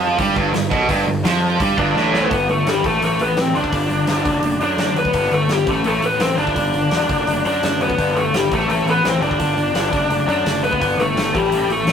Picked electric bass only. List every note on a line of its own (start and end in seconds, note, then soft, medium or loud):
0.00 0.16 F2 loud
0.18 0.35 G2 medium
0.36 0.53 G1 loud
0.54 0.70 G1 medium
0.71 0.88 B1 medium
0.89 1.05 G1 medium
1.06 1.23 G1 medium
1.23 1.57 F2 medium
1.60 1.76 G2 medium
1.78 1.94 G1 medium
1.95 2.28 A1 medium
2.31 2.46 G1 medium
2.49 2.64 G1 medium
2.66 2.82 G1 medium
2.85 3.00 A1 medium
3.02 3.17 A1 medium
3.20 3.35 A1 medium
3.38 3.53 A1 medium
3.55 3.71 F#1 medium
3.72 3.88 G1 medium
3.91 4.06 G1 medium
4.08 4.23 G1 medium
4.25 4.41 F#1 medium
4.43 4.58 F#1 medium
4.60 4.76 F#2 medium
4.77 5.09 F#2 medium
5.14 5.30 G1 medium
5.30 5.47 G1 medium
5.48 5.67 G1 medium
5.67 5.83 A1 medium
5.84 6.00 A1 medium
6.03 6.18 A1 medium
6.20 6.36 A1 medium
6.38 6.54 G1 medium
6.56 6.72 G1 medium
6.74 6.89 G1 medium
6.91 7.07 E1 medium
7.09 7.25 F#1 medium
7.27 7.42 F#1 medium
7.45 7.60 F#2 medium
7.63 7.94 F#2 medium
7.98 8.14 G1 medium
8.16 8.31 G1 medium
8.33 8.48 G1 medium
8.51 8.67 A1 medium
8.67 8.84 A1 medium
8.84 9.01 A1 medium
9.04 9.19 A1 medium
9.21 9.37 G1 medium
9.40 9.55 G1 medium
9.57 9.73 G1 medium
9.74 9.90 G1 medium
9.92 10.08 F#1 medium
10.10 10.26 F#1 medium
10.28 10.44 F#2 medium
10.45 10.82 F#1 medium
10.82 10.96 G1 medium
10.97 11.13 G1 medium
11.15 11.31 G1 medium
11.35 11.50 A1 medium
11.51 11.67 A1 medium
11.68 11.85 A1 medium
11.85 11.92 A1 medium